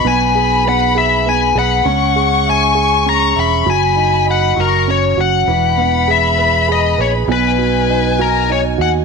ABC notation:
X:1
M:6/8
L:1/8
Q:3/8=66
K:B
V:1 name="Violin section"
b4- b b | c'6 | b3 c'2 z | b6 |
g6 |]
V:2 name="Lead electric guitar"
g2 f e g f- | f2 g2 a b | g2 f A c f- | f2 e2 d c |
B3 A c f |]
V:3 name="Grand piano"
B, G B, G B, G | C G e G C e | F, D d F, C F | E, B, G B G B |
B,, F, D F D F |]
V:4 name="Fingered electric bass" clef=bass
B,,,4- B,,, B,,, | C,,4- C,, E,,, | F,,,3 F,,,2 F,,, | E,,,4- E,,, A,,, |
B,,,4- B,,, D,, |]